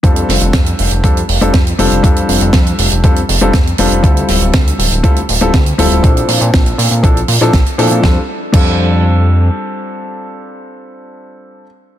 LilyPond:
<<
  \new Staff \with { instrumentName = "Grand piano" } { \time 4/4 \key f \major \tempo 4 = 120 <g c' d' f' a'>2 <g c' d' f' a'>16 r8 <g c' d' f' a'>16 r8 <g c' d' f' a'>8 | <g c' d' f' a'>2 <g c' d' f' a'>16 r8 <g c' d' f' a'>16 r8 <g c' d' f' a'>8 | <g c' e' f' a'>2 <g c' e' f' a'>16 r8 <g c' e' f' a'>16 r8 <g c' e' f' a'>8 | <f c' d' e' a'>2 <f c' d' e' a'>16 r8 <f c' d' e' a'>16 r8 <f c' d' e' a'>8 |
<g c' d' f' a'>16 r8. <g c' d' f' a'>2.~ | <g c' d' f' a'>1 | }
  \new Staff \with { instrumentName = "Analog synth bass" } { \clef bass \time 4/4 \key f \major f,8 f,,16 f,,16 f,8 f,,16 f,,16 f,8 f,,16 f,,16 f,8 f,,16 f,,16 | f,8 f,,16 f,,16 f,8 f,,16 f,,16 f,8 f,,16 f,,16 f,8 f,,16 f,,16 | d,8 d,,16 d,,16 d,8 d,,16 d,,16 d,8 d,,16 d,,16 d,8 d,,16 d,,16 | bes,,8 bes,16 bes,16 bes,,8 bes,16 bes,16 bes,,8 bes,16 bes,16 bes,,16 r16 bes,16 bes,16 |
f,16 r8. f,2 r4 | r1 | }
  \new DrumStaff \with { instrumentName = "Drums" } \drummode { \time 4/4 <hh bd>16 hh16 <hho sn>16 hh16 <hh bd sn>16 hh16 hho16 hh16 <hh bd>16 hh16 hho16 hh16 <hh bd sn>16 hh16 hho16 hh16 | <hh bd>16 hh16 hho16 hh16 <hh bd sn>16 hh16 hho16 hh16 <hh bd>16 hh16 hho16 hh16 <hh bd sn>16 hh16 hho16 hh16 | <hh bd>16 hh16 <hho sn>16 hh16 <hh bd sn>16 hh16 hho16 hh16 <hh bd>16 hh16 hho16 hh16 <hh bd sn>16 hh16 hho16 hh16 | <hh bd>16 hh16 hho16 hh16 <hh bd sn>16 hh16 hho16 hh16 <hh bd>16 hh16 hho16 <hh sn>16 <hh bd sn>16 hh16 hho16 hh16 |
<bd sn>4 <cymc bd>4 r4 r4 | r4 r4 r4 r4 | }
>>